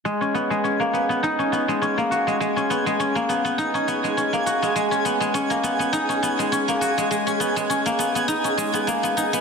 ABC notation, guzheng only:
X:1
M:4/4
L:1/16
Q:"Swing 16ths" 1/4=102
K:G#m
V:1 name="Guzheng"
G, C B, G, C A, B, B, D C B, G, C A, F G, | G, C B, G, C A, B, B, D C B, G, C A, F G, | G, C B, G, C A, B, B, D C B, G, C A, F G, | G, C B, G, C A, B, B, D C G, B, A, B, D B, |]